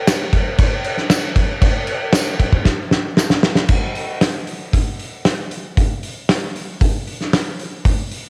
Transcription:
0.07 snare loud
0.07 tambourine loud
0.07 crash medium
0.33 kick medium
0.33 crash medium
0.58 kick loud
0.58 crash medium
0.84 crash medium
0.97 snare soft
1.10 snare loud
1.10 tambourine loud
1.10 crash medium
1.36 kick medium
1.36 crash medium
1.62 kick loud
1.62 crash medium
1.87 crash medium
2.13 snare loud
2.13 tambourine loud
2.13 crash medium
2.40 kick medium
2.40 crash medium
2.53 kick medium
2.65 kick medium
2.65 snare medium
2.91 snare medium
3.17 snare loud
3.17 tambourine loud
3.30 snare medium
3.43 snare loud
3.55 snare medium
3.69 kick loud
3.69 crash medium
3.95 open hi-hat medium
4.21 snare loud
4.21 open hi-hat medium
4.47 open hi-hat soft
4.73 kick medium
4.73 open hi-hat medium
4.99 open hi-hat soft
5.25 snare loud
5.25 open hi-hat medium
5.51 open hi-hat medium
5.77 kick loud
5.77 open hi-hat medium
6.03 open hi-hat medium
6.29 snare loud
6.29 open hi-hat medium
6.56 open hi-hat medium
6.81 kick loud
6.81 open hi-hat medium
7.07 open hi-hat soft
7.21 snare soft
7.33 snare loud
7.33 open hi-hat medium
7.59 open hi-hat medium
7.85 kick loud
7.85 open hi-hat medium
8.11 open hi-hat medium

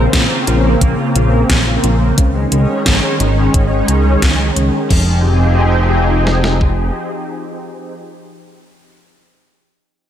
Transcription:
0.00 2.15 C#3 medium
0.00 2.15 A#3 medium
0.00 2.14 C4 medium
0.13 0.28 A#2 medium
0.13 0.22 C#4 medium
0.13 kick loud
0.13 snare loud
0.13 closed hi-hat medium
0.30 0.39 F4 loud
0.47 0.76 A#1 loud
0.47 0.56 F4 medium
0.47 closed hi-hat medium
0.64 0.73 A#3 medium
0.81 0.96 A#1 medium
0.81 0.94 A#3 medium
0.81 kick loud
0.81 closed hi-hat medium
0.99 1.07 F4 loud
1.16 1.44 A#1 medium
1.16 1.28 F4 medium
1.16 closed hi-hat medium
1.33 1.41 A#4 medium
1.50 1.78 A#1 medium
1.50 1.58 C#4 medium
1.50 kick loud
1.50 snare loud
1.50 closed hi-hat medium
1.67 1.75 F4 medium
1.84 2.12 A#1 loud
1.84 1.92 F4 medium
1.84 closed hi-hat medium
2.01 2.09 A#3 medium
2.18 2.47 C#2 medium
2.18 2.31 C#3 medium
2.18 4.88 D#3 medium
2.18 4.88 G#3 medium
2.18 4.88 C#4 medium
2.18 kick loud
2.18 closed hi-hat medium
2.35 2.43 G#3 loud
2.52 2.66 C#2 loud
2.52 2.65 G#3 medium
2.52 closed hi-hat medium
2.69 2.77 C#4 medium
2.86 3.00 G#1 medium
2.86 2.95 F3 medium
2.86 kick loud
2.86 snare loud
2.86 closed hi-hat medium
3.03 3.12 G#3 loud
3.20 3.49 G#1 loud
3.20 3.29 G#3 medium
3.20 closed hi-hat medium
3.37 3.46 C#3 medium
3.54 3.83 G#1 loud
3.54 3.67 C#3 medium
3.54 kick loud
3.54 closed hi-hat medium
3.71 3.80 G#3 loud
3.88 4.17 C#2 medium
3.88 3.97 G#3 medium
3.88 closed hi-hat medium
4.05 4.18 G#3 medium
4.22 4.51 C#2 medium
4.22 4.31 C#3 medium
4.22 kick loud
4.22 snare loud
4.22 closed hi-hat medium
4.39 4.48 G#3 medium
4.56 4.71 C#2 medium
4.56 4.62 C#3 medium
4.56 closed hi-hat medium
4.73 4.79 C#4 medium
4.90 6.91 F1 medium
4.90 5.22 F3 medium
4.90 7.91 F3 medium
4.90 7.91 C4 medium
4.90 7.91 D#4 medium
4.90 7.91 G4 medium
4.90 7.91 G#4 medium
4.90 kick loud
4.90 crash medium
6.27 snare medium
6.44 snare medium
6.61 kick medium

